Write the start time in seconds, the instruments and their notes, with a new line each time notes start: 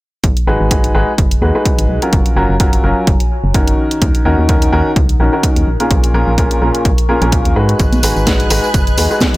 0.24 fm bass G#1, ambient pad G#4, kick, closed hi-hat
0.30 ambient pad D#5
0.37 closed hi-hat
0.45 fm bass G#1, upright piano G#3 D#4 F#4 G#4 B4, ambient pad B5
0.60 fm bass G#1
0.71 upright piano G#3 D#4 F#4 G#4 B4, kick, closed hi-hat
0.84 closed hi-hat
0.95 fm bass G#1, upright piano G#3 D#4 F#4 G#4 B4
1.18 fm bass F#1, kick, closed hi-hat
1.31 closed hi-hat
1.42 fm bass D#2, upright piano G#3 D#4 F#4 G#4 B4
1.55 upright piano G#3 D#4 F#4 G#4 B4
1.65 kick, closed hi-hat
1.78 fm bass G#1, closed hi-hat
1.89 fm bass B1
2.02 upright piano F#3 C#4 F4 F#4 A#4, closed hi-hat
2.13 fm bass F#1, ambient pad F#4, kick, closed hi-hat
2.26 closed hi-hat
2.36 fm bass F#1, upright piano F#3 C#4 F4 F#4 A#4, ambient pad G#5
2.43 ambient pad C#5 A#5
2.49 fm bass F#1
2.60 upright piano F#3 C#4 F4 F#4 A#4, kick, closed hi-hat
2.73 closed hi-hat
2.84 fm bass F#1, upright piano F#3 C#4 F4 F#4 A#4
3.07 fm bass F#1, kick, closed hi-hat
3.20 closed hi-hat
3.44 fm bass F#1
3.54 upright piano D#3 C#4 D#4 F#4 A#4, kick, closed hi-hat
3.67 closed hi-hat
3.78 ambient pad D#4
3.91 ambient pad F#5, closed hi-hat
4.02 fm bass D#2, kick, closed hi-hat
4.13 ambient pad A#4, closed hi-hat
4.25 fm bass D#2, upright piano D#3 C#4 D#4 F#4 A#4
4.38 fm bass D#2
4.49 upright piano D#3 C#4 D#4 F#4 A#4, kick, closed hi-hat
4.62 closed hi-hat
4.73 fm bass D#2, upright piano D#3 C#4 D#4 F#4 A#4
4.96 fm bass C#2, kick, closed hi-hat
5.09 closed hi-hat
5.20 fm bass A#1, upright piano D#3 C#4 D#4 F#4 A#4
5.33 upright piano D#3 C#4 D#4 F#4 A#4
5.43 kick, closed hi-hat
5.56 fm bass D#2, closed hi-hat
5.67 fm bass A#1
5.80 upright piano A#2 C#4 F4 G#4 A#4, ambient pad A#5, closed hi-hat
5.91 fm bass A#1, kick, closed hi-hat
6.04 ambient pad C#6, closed hi-hat
6.14 fm bass A#1, upright piano A#2 C#4 F4 G#4 A#4
6.27 fm bass A#1
6.38 upright piano A#2 C#4 F4 G#4 A#4, kick, closed hi-hat
6.51 closed hi-hat
6.61 fm bass A#1, upright piano A#2 C#4 F4 G#4 A#4
6.75 closed hi-hat
6.85 fm bass A#1, kick, closed hi-hat
6.98 closed hi-hat
7.09 upright piano A#2 C#4 F4 G#4 A#4
7.22 fm bass A#1, upright piano A#2 C#4 F4 G#4 A#4, closed hi-hat
7.32 kick, closed hi-hat
7.45 fm bass D#2, closed hi-hat
7.56 fm bass G#2, upright piano G#3 D#4 F#4 G#4 B4
7.69 closed hi-hat
7.79 fm bass G#1, ambient pad G#4, violin section B4 G#5 F#6, kick, closed hi-hat, tambourine
7.92 closed hi-hat, tambourine, high conga
8.00 fm bass G#1, upright piano G#3 D#4 F#4 G#4 B4, ambient pad D#5, open hi-hat, tambourine
8.16 fm bass G#1, tambourine
8.27 upright piano G#3 D#4 F#4 G#4 B4, kick, snare, closed hi-hat, tambourine
8.33 ambient pad B5
8.40 closed hi-hat, tambourine
8.50 fm bass G#1, upright piano G#3 D#4 F#4 G#4 B4, open hi-hat, tambourine
8.64 tambourine
8.74 fm bass F#1, kick, closed hi-hat, tambourine
8.87 closed hi-hat, tambourine
8.97 fm bass D#2, upright piano G#3 D#4 F#4 G#4 B4, open hi-hat, tambourine
9.11 upright piano G#3 D#4 F#4 G#4 B4, tambourine
9.20 kick, snare, closed hi-hat, tambourine, high conga